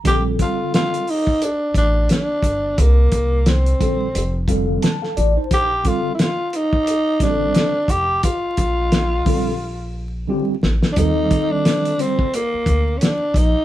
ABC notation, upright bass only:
X:1
M:4/4
L:1/16
Q:"Swing 16ths" 1/4=88
K:Bb
V:1 name="Upright bass" clef=bass
B,,,2 z8 A,,,2 z2 G,,,2 | C,,2 C,,4 B,,,2 F,,,4 z2 A,,, z | B,,,2 z8 A,,,2 z2 F,,,2 | z2 B,,,4 B,,,6 z2 A,,, z |
E,,2 z8 D,,2 z2 B,,, z |]